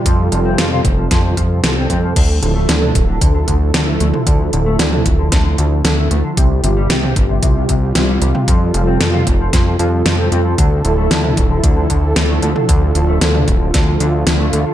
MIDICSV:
0, 0, Header, 1, 5, 480
1, 0, Start_track
1, 0, Key_signature, -1, "minor"
1, 0, Tempo, 526316
1, 52, Time_signature, 4, 2, 24, 8
1, 13441, End_track
2, 0, Start_track
2, 0, Title_t, "Analog synth pad"
2, 0, Program_c, 0, 89
2, 0, Note_on_c, 0, 55, 75
2, 0, Note_on_c, 0, 65, 74
2, 51, Note_on_c, 0, 48, 81
2, 51, Note_on_c, 0, 69, 91
2, 1936, Note_off_c, 0, 55, 0
2, 1936, Note_off_c, 0, 65, 0
2, 1953, Note_off_c, 0, 48, 0
2, 1973, Note_on_c, 0, 50, 82
2, 1973, Note_on_c, 0, 53, 73
2, 1973, Note_on_c, 0, 64, 73
2, 5775, Note_off_c, 0, 69, 0
2, 5776, Note_off_c, 0, 50, 0
2, 5776, Note_off_c, 0, 53, 0
2, 5776, Note_off_c, 0, 64, 0
2, 5812, Note_on_c, 0, 55, 75
2, 5812, Note_on_c, 0, 65, 77
2, 5813, Note_on_c, 0, 48, 80
2, 5813, Note_on_c, 0, 67, 89
2, 7713, Note_off_c, 0, 67, 0
2, 7733, Note_on_c, 0, 69, 90
2, 9616, Note_off_c, 0, 48, 0
2, 9616, Note_off_c, 0, 55, 0
2, 9616, Note_off_c, 0, 65, 0
2, 9652, Note_on_c, 0, 53, 73
2, 9653, Note_on_c, 0, 50, 78
2, 9653, Note_on_c, 0, 64, 75
2, 11553, Note_off_c, 0, 64, 0
2, 11570, Note_on_c, 0, 65, 73
2, 13441, Note_off_c, 0, 50, 0
2, 13441, Note_off_c, 0, 53, 0
2, 13441, Note_off_c, 0, 65, 0
2, 13441, Note_off_c, 0, 69, 0
2, 13441, End_track
3, 0, Start_track
3, 0, Title_t, "Clean electric guitar"
3, 0, Program_c, 1, 27
3, 52, Note_on_c, 1, 53, 77
3, 142, Note_off_c, 1, 53, 0
3, 292, Note_on_c, 1, 53, 74
3, 328, Note_off_c, 1, 53, 0
3, 412, Note_on_c, 1, 60, 77
3, 502, Note_off_c, 1, 60, 0
3, 532, Note_on_c, 1, 53, 78
3, 592, Note_off_c, 1, 53, 0
3, 653, Note_on_c, 1, 65, 70
3, 712, Note_off_c, 1, 65, 0
3, 892, Note_on_c, 1, 53, 69
3, 952, Note_off_c, 1, 53, 0
3, 1012, Note_on_c, 1, 53, 77
3, 1102, Note_off_c, 1, 53, 0
3, 1132, Note_on_c, 1, 53, 74
3, 1192, Note_off_c, 1, 53, 0
3, 1252, Note_on_c, 1, 53, 74
3, 1288, Note_off_c, 1, 53, 0
3, 1492, Note_on_c, 1, 53, 74
3, 1528, Note_off_c, 1, 53, 0
3, 1612, Note_on_c, 1, 60, 68
3, 1672, Note_off_c, 1, 60, 0
3, 1732, Note_on_c, 1, 60, 71
3, 1792, Note_off_c, 1, 60, 0
3, 1852, Note_on_c, 1, 53, 70
3, 1912, Note_off_c, 1, 53, 0
3, 1971, Note_on_c, 1, 50, 78
3, 2062, Note_off_c, 1, 50, 0
3, 2211, Note_on_c, 1, 50, 70
3, 2248, Note_off_c, 1, 50, 0
3, 2331, Note_on_c, 1, 57, 74
3, 2422, Note_off_c, 1, 57, 0
3, 2451, Note_on_c, 1, 50, 77
3, 2512, Note_off_c, 1, 50, 0
3, 2571, Note_on_c, 1, 62, 72
3, 2632, Note_off_c, 1, 62, 0
3, 2811, Note_on_c, 1, 50, 73
3, 2872, Note_off_c, 1, 50, 0
3, 2931, Note_on_c, 1, 50, 73
3, 3022, Note_off_c, 1, 50, 0
3, 3051, Note_on_c, 1, 50, 72
3, 3112, Note_off_c, 1, 50, 0
3, 3171, Note_on_c, 1, 50, 74
3, 3207, Note_off_c, 1, 50, 0
3, 3411, Note_on_c, 1, 50, 73
3, 3448, Note_off_c, 1, 50, 0
3, 3531, Note_on_c, 1, 57, 73
3, 3592, Note_off_c, 1, 57, 0
3, 3652, Note_on_c, 1, 57, 71
3, 3712, Note_off_c, 1, 57, 0
3, 3771, Note_on_c, 1, 50, 75
3, 3831, Note_off_c, 1, 50, 0
3, 3891, Note_on_c, 1, 50, 80
3, 3982, Note_off_c, 1, 50, 0
3, 4132, Note_on_c, 1, 50, 77
3, 4168, Note_off_c, 1, 50, 0
3, 4252, Note_on_c, 1, 57, 76
3, 4342, Note_off_c, 1, 57, 0
3, 4372, Note_on_c, 1, 50, 80
3, 4432, Note_off_c, 1, 50, 0
3, 4492, Note_on_c, 1, 62, 71
3, 4552, Note_off_c, 1, 62, 0
3, 4732, Note_on_c, 1, 50, 75
3, 4792, Note_off_c, 1, 50, 0
3, 4852, Note_on_c, 1, 50, 77
3, 4942, Note_off_c, 1, 50, 0
3, 4972, Note_on_c, 1, 50, 75
3, 5032, Note_off_c, 1, 50, 0
3, 5091, Note_on_c, 1, 50, 76
3, 5128, Note_off_c, 1, 50, 0
3, 5332, Note_on_c, 1, 50, 75
3, 5368, Note_off_c, 1, 50, 0
3, 5451, Note_on_c, 1, 57, 74
3, 5512, Note_off_c, 1, 57, 0
3, 5571, Note_on_c, 1, 57, 74
3, 5632, Note_off_c, 1, 57, 0
3, 5692, Note_on_c, 1, 50, 74
3, 5752, Note_off_c, 1, 50, 0
3, 5811, Note_on_c, 1, 48, 82
3, 5902, Note_off_c, 1, 48, 0
3, 6052, Note_on_c, 1, 48, 75
3, 6088, Note_off_c, 1, 48, 0
3, 6172, Note_on_c, 1, 55, 80
3, 6262, Note_off_c, 1, 55, 0
3, 6292, Note_on_c, 1, 48, 81
3, 6352, Note_off_c, 1, 48, 0
3, 6411, Note_on_c, 1, 60, 71
3, 6472, Note_off_c, 1, 60, 0
3, 6651, Note_on_c, 1, 48, 76
3, 6712, Note_off_c, 1, 48, 0
3, 6771, Note_on_c, 1, 48, 74
3, 6862, Note_off_c, 1, 48, 0
3, 6892, Note_on_c, 1, 48, 75
3, 6952, Note_off_c, 1, 48, 0
3, 7012, Note_on_c, 1, 48, 75
3, 7048, Note_off_c, 1, 48, 0
3, 7251, Note_on_c, 1, 48, 76
3, 7288, Note_off_c, 1, 48, 0
3, 7372, Note_on_c, 1, 55, 72
3, 7432, Note_off_c, 1, 55, 0
3, 7491, Note_on_c, 1, 55, 68
3, 7552, Note_off_c, 1, 55, 0
3, 7612, Note_on_c, 1, 48, 74
3, 7672, Note_off_c, 1, 48, 0
3, 7731, Note_on_c, 1, 53, 78
3, 7822, Note_off_c, 1, 53, 0
3, 7971, Note_on_c, 1, 53, 74
3, 8008, Note_off_c, 1, 53, 0
3, 8091, Note_on_c, 1, 60, 77
3, 8181, Note_off_c, 1, 60, 0
3, 8211, Note_on_c, 1, 53, 78
3, 8272, Note_off_c, 1, 53, 0
3, 8331, Note_on_c, 1, 65, 68
3, 8392, Note_off_c, 1, 65, 0
3, 8572, Note_on_c, 1, 53, 69
3, 8632, Note_off_c, 1, 53, 0
3, 8692, Note_on_c, 1, 53, 73
3, 8782, Note_off_c, 1, 53, 0
3, 8812, Note_on_c, 1, 53, 74
3, 8872, Note_off_c, 1, 53, 0
3, 8931, Note_on_c, 1, 53, 78
3, 8968, Note_off_c, 1, 53, 0
3, 9171, Note_on_c, 1, 53, 73
3, 9208, Note_off_c, 1, 53, 0
3, 9291, Note_on_c, 1, 60, 71
3, 9351, Note_off_c, 1, 60, 0
3, 9411, Note_on_c, 1, 60, 69
3, 9472, Note_off_c, 1, 60, 0
3, 9531, Note_on_c, 1, 53, 72
3, 9592, Note_off_c, 1, 53, 0
3, 9651, Note_on_c, 1, 50, 79
3, 9742, Note_off_c, 1, 50, 0
3, 9891, Note_on_c, 1, 50, 74
3, 9927, Note_off_c, 1, 50, 0
3, 10012, Note_on_c, 1, 57, 76
3, 10102, Note_off_c, 1, 57, 0
3, 10132, Note_on_c, 1, 50, 82
3, 10192, Note_off_c, 1, 50, 0
3, 10252, Note_on_c, 1, 62, 69
3, 10312, Note_off_c, 1, 62, 0
3, 10492, Note_on_c, 1, 50, 75
3, 10552, Note_off_c, 1, 50, 0
3, 10612, Note_on_c, 1, 50, 76
3, 10702, Note_off_c, 1, 50, 0
3, 10731, Note_on_c, 1, 50, 75
3, 10792, Note_off_c, 1, 50, 0
3, 10851, Note_on_c, 1, 50, 76
3, 10887, Note_off_c, 1, 50, 0
3, 11091, Note_on_c, 1, 50, 75
3, 11127, Note_off_c, 1, 50, 0
3, 11211, Note_on_c, 1, 57, 73
3, 11272, Note_off_c, 1, 57, 0
3, 11331, Note_on_c, 1, 57, 72
3, 11392, Note_off_c, 1, 57, 0
3, 11451, Note_on_c, 1, 50, 73
3, 11512, Note_off_c, 1, 50, 0
3, 11572, Note_on_c, 1, 50, 79
3, 11662, Note_off_c, 1, 50, 0
3, 11811, Note_on_c, 1, 50, 72
3, 11848, Note_off_c, 1, 50, 0
3, 11931, Note_on_c, 1, 57, 75
3, 12021, Note_off_c, 1, 57, 0
3, 12052, Note_on_c, 1, 50, 79
3, 12112, Note_off_c, 1, 50, 0
3, 12171, Note_on_c, 1, 62, 73
3, 12232, Note_off_c, 1, 62, 0
3, 12411, Note_on_c, 1, 50, 72
3, 12472, Note_off_c, 1, 50, 0
3, 12531, Note_on_c, 1, 50, 80
3, 12621, Note_off_c, 1, 50, 0
3, 12651, Note_on_c, 1, 50, 72
3, 12712, Note_off_c, 1, 50, 0
3, 12772, Note_on_c, 1, 50, 78
3, 12808, Note_off_c, 1, 50, 0
3, 13012, Note_on_c, 1, 50, 74
3, 13048, Note_off_c, 1, 50, 0
3, 13131, Note_on_c, 1, 57, 77
3, 13192, Note_off_c, 1, 57, 0
3, 13252, Note_on_c, 1, 57, 72
3, 13312, Note_off_c, 1, 57, 0
3, 13372, Note_on_c, 1, 50, 78
3, 13432, Note_off_c, 1, 50, 0
3, 13441, End_track
4, 0, Start_track
4, 0, Title_t, "Analog synth bass"
4, 0, Program_c, 2, 38
4, 52, Note_on_c, 2, 41, 98
4, 271, Note_off_c, 2, 41, 0
4, 292, Note_on_c, 2, 29, 103
4, 510, Note_off_c, 2, 29, 0
4, 532, Note_on_c, 2, 41, 88
4, 750, Note_off_c, 2, 41, 0
4, 772, Note_on_c, 2, 29, 94
4, 991, Note_off_c, 2, 29, 0
4, 1013, Note_on_c, 2, 41, 86
4, 1231, Note_off_c, 2, 41, 0
4, 1253, Note_on_c, 2, 41, 91
4, 1471, Note_off_c, 2, 41, 0
4, 1492, Note_on_c, 2, 36, 86
4, 1711, Note_off_c, 2, 36, 0
4, 1732, Note_on_c, 2, 41, 89
4, 1951, Note_off_c, 2, 41, 0
4, 1972, Note_on_c, 2, 38, 101
4, 2191, Note_off_c, 2, 38, 0
4, 2212, Note_on_c, 2, 26, 97
4, 2430, Note_off_c, 2, 26, 0
4, 2451, Note_on_c, 2, 38, 87
4, 2670, Note_off_c, 2, 38, 0
4, 2692, Note_on_c, 2, 26, 93
4, 2911, Note_off_c, 2, 26, 0
4, 2932, Note_on_c, 2, 38, 84
4, 3151, Note_off_c, 2, 38, 0
4, 3172, Note_on_c, 2, 38, 99
4, 3391, Note_off_c, 2, 38, 0
4, 3412, Note_on_c, 2, 38, 92
4, 3631, Note_off_c, 2, 38, 0
4, 3652, Note_on_c, 2, 38, 91
4, 3761, Note_off_c, 2, 38, 0
4, 3892, Note_on_c, 2, 38, 99
4, 4111, Note_off_c, 2, 38, 0
4, 4131, Note_on_c, 2, 26, 100
4, 4350, Note_off_c, 2, 26, 0
4, 4371, Note_on_c, 2, 38, 88
4, 4590, Note_off_c, 2, 38, 0
4, 4612, Note_on_c, 2, 26, 92
4, 4831, Note_off_c, 2, 26, 0
4, 4852, Note_on_c, 2, 38, 87
4, 5071, Note_off_c, 2, 38, 0
4, 5092, Note_on_c, 2, 38, 99
4, 5311, Note_off_c, 2, 38, 0
4, 5332, Note_on_c, 2, 38, 93
4, 5550, Note_off_c, 2, 38, 0
4, 5572, Note_on_c, 2, 38, 93
4, 5681, Note_off_c, 2, 38, 0
4, 5812, Note_on_c, 2, 36, 101
4, 6031, Note_off_c, 2, 36, 0
4, 6052, Note_on_c, 2, 31, 104
4, 6271, Note_off_c, 2, 31, 0
4, 6292, Note_on_c, 2, 36, 82
4, 6511, Note_off_c, 2, 36, 0
4, 6533, Note_on_c, 2, 31, 91
4, 6751, Note_off_c, 2, 31, 0
4, 6773, Note_on_c, 2, 36, 89
4, 6991, Note_off_c, 2, 36, 0
4, 7012, Note_on_c, 2, 36, 94
4, 7231, Note_off_c, 2, 36, 0
4, 7252, Note_on_c, 2, 36, 90
4, 7470, Note_off_c, 2, 36, 0
4, 7492, Note_on_c, 2, 36, 96
4, 7601, Note_off_c, 2, 36, 0
4, 7733, Note_on_c, 2, 41, 100
4, 7951, Note_off_c, 2, 41, 0
4, 7972, Note_on_c, 2, 29, 94
4, 8190, Note_off_c, 2, 29, 0
4, 8212, Note_on_c, 2, 41, 82
4, 8431, Note_off_c, 2, 41, 0
4, 8453, Note_on_c, 2, 29, 90
4, 8671, Note_off_c, 2, 29, 0
4, 8693, Note_on_c, 2, 41, 85
4, 8911, Note_off_c, 2, 41, 0
4, 8931, Note_on_c, 2, 41, 95
4, 9150, Note_off_c, 2, 41, 0
4, 9172, Note_on_c, 2, 41, 95
4, 9391, Note_off_c, 2, 41, 0
4, 9412, Note_on_c, 2, 41, 91
4, 9631, Note_off_c, 2, 41, 0
4, 9652, Note_on_c, 2, 38, 95
4, 9871, Note_off_c, 2, 38, 0
4, 9892, Note_on_c, 2, 26, 98
4, 10111, Note_off_c, 2, 26, 0
4, 10131, Note_on_c, 2, 38, 85
4, 10350, Note_off_c, 2, 38, 0
4, 10372, Note_on_c, 2, 26, 92
4, 10591, Note_off_c, 2, 26, 0
4, 10612, Note_on_c, 2, 38, 82
4, 10831, Note_off_c, 2, 38, 0
4, 10852, Note_on_c, 2, 38, 96
4, 11071, Note_off_c, 2, 38, 0
4, 11091, Note_on_c, 2, 38, 93
4, 11310, Note_off_c, 2, 38, 0
4, 11331, Note_on_c, 2, 38, 97
4, 11441, Note_off_c, 2, 38, 0
4, 11572, Note_on_c, 2, 38, 100
4, 11790, Note_off_c, 2, 38, 0
4, 11811, Note_on_c, 2, 26, 103
4, 12030, Note_off_c, 2, 26, 0
4, 12051, Note_on_c, 2, 38, 83
4, 12270, Note_off_c, 2, 38, 0
4, 12292, Note_on_c, 2, 26, 93
4, 12511, Note_off_c, 2, 26, 0
4, 12532, Note_on_c, 2, 38, 87
4, 12750, Note_off_c, 2, 38, 0
4, 12771, Note_on_c, 2, 38, 97
4, 12990, Note_off_c, 2, 38, 0
4, 13011, Note_on_c, 2, 38, 91
4, 13230, Note_off_c, 2, 38, 0
4, 13251, Note_on_c, 2, 38, 92
4, 13361, Note_off_c, 2, 38, 0
4, 13441, End_track
5, 0, Start_track
5, 0, Title_t, "Drums"
5, 52, Note_on_c, 9, 42, 94
5, 53, Note_on_c, 9, 36, 111
5, 144, Note_off_c, 9, 36, 0
5, 144, Note_off_c, 9, 42, 0
5, 293, Note_on_c, 9, 42, 61
5, 384, Note_off_c, 9, 42, 0
5, 532, Note_on_c, 9, 38, 109
5, 532, Note_on_c, 9, 42, 88
5, 623, Note_off_c, 9, 38, 0
5, 623, Note_off_c, 9, 42, 0
5, 653, Note_on_c, 9, 45, 82
5, 744, Note_off_c, 9, 45, 0
5, 772, Note_on_c, 9, 36, 98
5, 772, Note_on_c, 9, 42, 65
5, 864, Note_off_c, 9, 36, 0
5, 864, Note_off_c, 9, 42, 0
5, 1013, Note_on_c, 9, 36, 105
5, 1013, Note_on_c, 9, 38, 58
5, 1013, Note_on_c, 9, 42, 91
5, 1104, Note_off_c, 9, 36, 0
5, 1104, Note_off_c, 9, 38, 0
5, 1104, Note_off_c, 9, 42, 0
5, 1253, Note_on_c, 9, 36, 58
5, 1253, Note_on_c, 9, 42, 61
5, 1344, Note_off_c, 9, 36, 0
5, 1344, Note_off_c, 9, 42, 0
5, 1492, Note_on_c, 9, 38, 116
5, 1492, Note_on_c, 9, 42, 93
5, 1584, Note_off_c, 9, 38, 0
5, 1584, Note_off_c, 9, 42, 0
5, 1732, Note_on_c, 9, 36, 54
5, 1732, Note_on_c, 9, 42, 62
5, 1823, Note_off_c, 9, 42, 0
5, 1824, Note_off_c, 9, 36, 0
5, 1972, Note_on_c, 9, 36, 112
5, 1972, Note_on_c, 9, 42, 89
5, 1972, Note_on_c, 9, 49, 73
5, 2064, Note_off_c, 9, 36, 0
5, 2064, Note_off_c, 9, 42, 0
5, 2064, Note_off_c, 9, 49, 0
5, 2212, Note_on_c, 9, 42, 66
5, 2304, Note_off_c, 9, 42, 0
5, 2452, Note_on_c, 9, 38, 106
5, 2452, Note_on_c, 9, 42, 88
5, 2543, Note_off_c, 9, 38, 0
5, 2543, Note_off_c, 9, 42, 0
5, 2572, Note_on_c, 9, 45, 83
5, 2663, Note_off_c, 9, 45, 0
5, 2692, Note_on_c, 9, 36, 100
5, 2692, Note_on_c, 9, 42, 65
5, 2784, Note_off_c, 9, 36, 0
5, 2784, Note_off_c, 9, 42, 0
5, 2932, Note_on_c, 9, 36, 111
5, 2932, Note_on_c, 9, 42, 89
5, 3023, Note_off_c, 9, 42, 0
5, 3024, Note_off_c, 9, 36, 0
5, 3172, Note_on_c, 9, 36, 61
5, 3172, Note_on_c, 9, 42, 66
5, 3263, Note_off_c, 9, 36, 0
5, 3263, Note_off_c, 9, 42, 0
5, 3412, Note_on_c, 9, 38, 117
5, 3412, Note_on_c, 9, 42, 94
5, 3503, Note_off_c, 9, 38, 0
5, 3503, Note_off_c, 9, 42, 0
5, 3652, Note_on_c, 9, 42, 65
5, 3743, Note_off_c, 9, 42, 0
5, 3772, Note_on_c, 9, 45, 85
5, 3863, Note_off_c, 9, 45, 0
5, 3891, Note_on_c, 9, 42, 95
5, 3892, Note_on_c, 9, 36, 116
5, 3982, Note_off_c, 9, 42, 0
5, 3983, Note_off_c, 9, 36, 0
5, 4131, Note_on_c, 9, 42, 64
5, 4223, Note_off_c, 9, 42, 0
5, 4372, Note_on_c, 9, 38, 117
5, 4372, Note_on_c, 9, 42, 91
5, 4463, Note_off_c, 9, 38, 0
5, 4463, Note_off_c, 9, 42, 0
5, 4492, Note_on_c, 9, 45, 89
5, 4583, Note_off_c, 9, 45, 0
5, 4612, Note_on_c, 9, 36, 105
5, 4612, Note_on_c, 9, 42, 65
5, 4703, Note_off_c, 9, 36, 0
5, 4703, Note_off_c, 9, 42, 0
5, 4852, Note_on_c, 9, 36, 113
5, 4852, Note_on_c, 9, 38, 60
5, 4852, Note_on_c, 9, 42, 90
5, 4943, Note_off_c, 9, 36, 0
5, 4943, Note_off_c, 9, 38, 0
5, 4943, Note_off_c, 9, 42, 0
5, 5092, Note_on_c, 9, 42, 63
5, 5183, Note_off_c, 9, 42, 0
5, 5332, Note_on_c, 9, 38, 124
5, 5332, Note_on_c, 9, 42, 95
5, 5423, Note_off_c, 9, 38, 0
5, 5423, Note_off_c, 9, 42, 0
5, 5572, Note_on_c, 9, 42, 67
5, 5663, Note_off_c, 9, 42, 0
5, 5812, Note_on_c, 9, 36, 119
5, 5813, Note_on_c, 9, 42, 89
5, 5904, Note_off_c, 9, 36, 0
5, 5904, Note_off_c, 9, 42, 0
5, 6053, Note_on_c, 9, 42, 64
5, 6144, Note_off_c, 9, 42, 0
5, 6292, Note_on_c, 9, 38, 115
5, 6292, Note_on_c, 9, 42, 87
5, 6384, Note_off_c, 9, 38, 0
5, 6384, Note_off_c, 9, 42, 0
5, 6412, Note_on_c, 9, 45, 93
5, 6503, Note_off_c, 9, 45, 0
5, 6533, Note_on_c, 9, 36, 110
5, 6533, Note_on_c, 9, 42, 63
5, 6624, Note_off_c, 9, 36, 0
5, 6624, Note_off_c, 9, 42, 0
5, 6772, Note_on_c, 9, 42, 90
5, 6773, Note_on_c, 9, 36, 116
5, 6864, Note_off_c, 9, 36, 0
5, 6864, Note_off_c, 9, 42, 0
5, 7013, Note_on_c, 9, 36, 63
5, 7013, Note_on_c, 9, 42, 63
5, 7104, Note_off_c, 9, 36, 0
5, 7104, Note_off_c, 9, 42, 0
5, 7253, Note_on_c, 9, 38, 121
5, 7253, Note_on_c, 9, 42, 93
5, 7344, Note_off_c, 9, 38, 0
5, 7344, Note_off_c, 9, 42, 0
5, 7493, Note_on_c, 9, 42, 67
5, 7584, Note_off_c, 9, 42, 0
5, 7613, Note_on_c, 9, 45, 90
5, 7704, Note_off_c, 9, 45, 0
5, 7733, Note_on_c, 9, 36, 124
5, 7733, Note_on_c, 9, 42, 90
5, 7824, Note_off_c, 9, 36, 0
5, 7824, Note_off_c, 9, 42, 0
5, 7973, Note_on_c, 9, 42, 62
5, 8064, Note_off_c, 9, 42, 0
5, 8213, Note_on_c, 9, 38, 112
5, 8213, Note_on_c, 9, 42, 83
5, 8304, Note_off_c, 9, 38, 0
5, 8304, Note_off_c, 9, 42, 0
5, 8333, Note_on_c, 9, 45, 90
5, 8424, Note_off_c, 9, 45, 0
5, 8452, Note_on_c, 9, 36, 106
5, 8453, Note_on_c, 9, 42, 61
5, 8544, Note_off_c, 9, 36, 0
5, 8544, Note_off_c, 9, 42, 0
5, 8692, Note_on_c, 9, 36, 116
5, 8693, Note_on_c, 9, 38, 60
5, 8693, Note_on_c, 9, 42, 90
5, 8784, Note_off_c, 9, 36, 0
5, 8784, Note_off_c, 9, 38, 0
5, 8784, Note_off_c, 9, 42, 0
5, 8932, Note_on_c, 9, 42, 63
5, 9023, Note_off_c, 9, 42, 0
5, 9172, Note_on_c, 9, 38, 117
5, 9172, Note_on_c, 9, 42, 92
5, 9263, Note_off_c, 9, 38, 0
5, 9263, Note_off_c, 9, 42, 0
5, 9412, Note_on_c, 9, 42, 59
5, 9503, Note_off_c, 9, 42, 0
5, 9652, Note_on_c, 9, 42, 88
5, 9653, Note_on_c, 9, 36, 118
5, 9743, Note_off_c, 9, 42, 0
5, 9744, Note_off_c, 9, 36, 0
5, 9892, Note_on_c, 9, 42, 60
5, 9983, Note_off_c, 9, 42, 0
5, 10132, Note_on_c, 9, 38, 110
5, 10132, Note_on_c, 9, 42, 80
5, 10223, Note_off_c, 9, 38, 0
5, 10223, Note_off_c, 9, 42, 0
5, 10252, Note_on_c, 9, 45, 91
5, 10343, Note_off_c, 9, 45, 0
5, 10372, Note_on_c, 9, 36, 100
5, 10372, Note_on_c, 9, 42, 59
5, 10463, Note_off_c, 9, 36, 0
5, 10463, Note_off_c, 9, 42, 0
5, 10612, Note_on_c, 9, 36, 111
5, 10612, Note_on_c, 9, 42, 84
5, 10703, Note_off_c, 9, 36, 0
5, 10703, Note_off_c, 9, 42, 0
5, 10852, Note_on_c, 9, 36, 59
5, 10852, Note_on_c, 9, 42, 59
5, 10943, Note_off_c, 9, 36, 0
5, 10943, Note_off_c, 9, 42, 0
5, 11092, Note_on_c, 9, 38, 123
5, 11092, Note_on_c, 9, 42, 93
5, 11183, Note_off_c, 9, 38, 0
5, 11183, Note_off_c, 9, 42, 0
5, 11332, Note_on_c, 9, 42, 60
5, 11423, Note_off_c, 9, 42, 0
5, 11452, Note_on_c, 9, 45, 91
5, 11543, Note_off_c, 9, 45, 0
5, 11572, Note_on_c, 9, 36, 115
5, 11573, Note_on_c, 9, 42, 82
5, 11663, Note_off_c, 9, 36, 0
5, 11664, Note_off_c, 9, 42, 0
5, 11812, Note_on_c, 9, 42, 61
5, 11903, Note_off_c, 9, 42, 0
5, 12051, Note_on_c, 9, 38, 109
5, 12051, Note_on_c, 9, 42, 82
5, 12143, Note_off_c, 9, 38, 0
5, 12143, Note_off_c, 9, 42, 0
5, 12171, Note_on_c, 9, 45, 88
5, 12263, Note_off_c, 9, 45, 0
5, 12291, Note_on_c, 9, 42, 60
5, 12292, Note_on_c, 9, 36, 98
5, 12382, Note_off_c, 9, 42, 0
5, 12383, Note_off_c, 9, 36, 0
5, 12531, Note_on_c, 9, 38, 55
5, 12531, Note_on_c, 9, 42, 87
5, 12532, Note_on_c, 9, 36, 105
5, 12623, Note_off_c, 9, 36, 0
5, 12623, Note_off_c, 9, 38, 0
5, 12623, Note_off_c, 9, 42, 0
5, 12772, Note_on_c, 9, 42, 61
5, 12863, Note_off_c, 9, 42, 0
5, 13011, Note_on_c, 9, 38, 115
5, 13011, Note_on_c, 9, 42, 92
5, 13103, Note_off_c, 9, 38, 0
5, 13103, Note_off_c, 9, 42, 0
5, 13252, Note_on_c, 9, 42, 62
5, 13343, Note_off_c, 9, 42, 0
5, 13441, End_track
0, 0, End_of_file